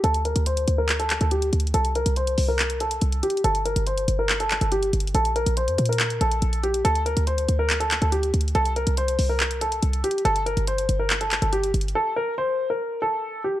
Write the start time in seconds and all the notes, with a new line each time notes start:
0.04 D2 A4, closed hi-hat
0.14 closed hi-hat
0.25 A#4, closed hi-hat
0.36 D2, closed hi-hat
0.46 C5, closed hi-hat
0.57 closed hi-hat
0.68 D2, closed hi-hat
0.78 A#4
0.89 clap, closed hi-hat
1.00 A4, closed hi-hat
1.10 clap, closed hi-hat
1.21 D2 A4, closed hi-hat
1.31 G4, closed hi-hat
1.42 closed hi-hat
1.53 D2, closed hi-hat
1.60 closed hi-hat
1.67 closed hi-hat
1.74 C2 A4, closed hi-hat
1.85 closed hi-hat
1.95 A#4, closed hi-hat
2.06 C2, closed hi-hat
2.16 C5, closed hi-hat
2.27 closed hi-hat
2.38 C2, open hi-hat
2.48 A#4
2.59 clap, closed hi-hat
2.70 closed hi-hat
2.80 A4, closed hi-hat
2.91 closed hi-hat
3.01 C2, closed hi-hat
3.12 closed hi-hat
3.23 G4, closed hi-hat
3.30 closed hi-hat
3.37 closed hi-hat
3.44 G1 A4, closed hi-hat
3.55 closed hi-hat
3.65 A#4, closed hi-hat
3.76 G1, closed hi-hat
3.87 C5, closed hi-hat
3.98 closed hi-hat
4.08 G1, closed hi-hat
4.19 A#4
4.29 clap, closed hi-hat
4.40 A4, closed hi-hat
4.51 clap, closed hi-hat
4.61 G1 A4, closed hi-hat
4.72 G4, closed hi-hat
4.83 closed hi-hat
4.93 G1, closed hi-hat
5.00 closed hi-hat
5.07 closed hi-hat
5.14 A#1 A4, closed hi-hat
5.25 closed hi-hat
5.36 A#4, closed hi-hat
5.46 A#1, closed hi-hat
5.57 C5, closed hi-hat
5.68 F2, closed hi-hat
5.78 A#2, closed hi-hat, open hi-hat
5.85 A#4, closed hi-hat
5.93 closed hi-hat
6.00 clap, closed hi-hat
6.10 closed hi-hat
6.21 A#1 A4, closed hi-hat
6.31 closed hi-hat
6.42 A#1, closed hi-hat
6.53 closed hi-hat
6.63 G4, closed hi-hat
6.74 closed hi-hat
6.85 D2 A4, closed hi-hat
6.95 closed hi-hat
7.06 A#4, closed hi-hat
7.17 D2, closed hi-hat
7.27 C5, closed hi-hat
7.38 closed hi-hat
7.49 D2, closed hi-hat
7.59 A#4
7.70 clap, closed hi-hat
7.80 A4, closed hi-hat
7.91 clap, closed hi-hat
8.02 D2 A4, closed hi-hat
8.12 G4, closed hi-hat
8.23 closed hi-hat
8.34 D2, closed hi-hat
8.41 closed hi-hat
8.48 closed hi-hat
8.55 C2 A4, closed hi-hat
8.65 closed hi-hat
8.76 A#4, closed hi-hat
8.87 C2, closed hi-hat
8.97 C5, closed hi-hat
9.08 closed hi-hat
9.19 C2, open hi-hat
9.29 A#4
9.40 clap, closed hi-hat
9.51 closed hi-hat
9.61 A4, closed hi-hat
9.72 closed hi-hat
9.82 C2, closed hi-hat
9.93 closed hi-hat
10.04 G4, closed hi-hat
10.11 closed hi-hat
10.18 closed hi-hat
10.25 G1 A4, closed hi-hat
10.36 closed hi-hat
10.46 A#4, closed hi-hat
10.57 G1, closed hi-hat
10.67 C5, closed hi-hat
10.78 closed hi-hat
10.89 G1, closed hi-hat
11.00 A#4
11.10 clap, closed hi-hat
11.21 A4, closed hi-hat
11.31 clap, closed hi-hat
11.42 G1 A4, closed hi-hat
11.53 G4, closed hi-hat
11.64 closed hi-hat
11.74 G1, closed hi-hat
11.81 closed hi-hat
11.88 closed hi-hat
11.95 A4
12.16 A#4
12.38 C5
12.70 A#4
13.02 A4
13.44 G4